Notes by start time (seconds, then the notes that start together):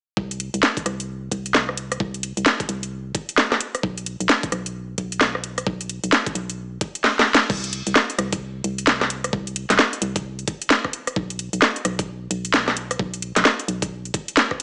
0.17 C2, kick
0.31 closed hi-hat
0.40 closed hi-hat
0.54 C2, closed hi-hat
0.63 snare
0.77 kick, closed hi-hat
0.86 C2, cross-stick, closed hi-hat
1.00 closed hi-hat
1.31 C2, kick, closed hi-hat
1.46 closed hi-hat
1.54 snare
1.69 cross-stick
1.77 closed hi-hat
1.92 cross-stick, closed hi-hat
2.00 C2, kick
2.14 closed hi-hat
2.23 closed hi-hat
2.37 C2, closed hi-hat
2.46 snare
2.60 kick, closed hi-hat
2.69 C2, closed hi-hat
2.83 closed hi-hat
3.15 kick, closed hi-hat
3.29 closed hi-hat
3.38 snare
3.52 cross-stick, snare
3.60 closed hi-hat
3.75 cross-stick, closed hi-hat
3.83 B1, kick
3.98 closed hi-hat
4.06 closed hi-hat
4.20 B1, closed hi-hat
4.29 snare
4.43 kick, closed hi-hat
4.52 B1, cross-stick, closed hi-hat
4.66 closed hi-hat
4.98 B1, kick, closed hi-hat
5.12 closed hi-hat
5.21 snare
5.35 cross-stick
5.44 closed hi-hat
5.58 cross-stick, closed hi-hat
5.67 B1, kick
5.81 closed hi-hat
5.89 closed hi-hat
6.04 B1, closed hi-hat
6.12 snare
6.26 kick, closed hi-hat
6.35 B1, closed hi-hat
6.50 closed hi-hat
6.81 kick, closed hi-hat
6.95 closed hi-hat
7.04 snare
7.19 snare
7.35 snare
7.50 C2, kick, crash
7.64 closed hi-hat
7.73 closed hi-hat
7.87 C2, closed hi-hat
7.96 snare
8.10 closed hi-hat
8.18 C2, cross-stick, closed hi-hat
8.32 kick, closed hi-hat
8.64 C2, closed hi-hat
8.78 closed hi-hat
8.87 snare
9.01 cross-stick, snare
9.10 closed hi-hat
9.24 cross-stick, closed hi-hat
9.33 C2, kick
9.47 closed hi-hat
9.56 closed hi-hat
9.70 C2, snare, closed hi-hat
9.79 snare
9.93 closed hi-hat
10.02 C2, closed hi-hat
10.16 kick, closed hi-hat
10.39 closed hi-hat
10.48 kick, closed hi-hat
10.62 closed hi-hat
10.70 snare
10.85 kick, cross-stick
10.93 closed hi-hat
11.07 cross-stick, closed hi-hat
11.16 B1, kick
11.30 closed hi-hat
11.39 closed hi-hat
11.53 B1, closed hi-hat
11.62 snare
11.76 closed hi-hat
11.85 B1, cross-stick, closed hi-hat
11.99 kick, closed hi-hat
12.31 B1, closed hi-hat
12.45 closed hi-hat
12.54 snare
12.68 cross-stick, snare
12.77 closed hi-hat
12.91 cross-stick, closed hi-hat
12.99 B1, kick
13.14 closed hi-hat
13.22 closed hi-hat
13.36 B1, snare, closed hi-hat
13.45 snare
13.59 closed hi-hat
13.68 B1, closed hi-hat
13.82 kick, closed hi-hat
14.05 closed hi-hat
14.14 kick, closed hi-hat
14.28 closed hi-hat
14.37 snare
14.51 kick, cross-stick
14.60 closed hi-hat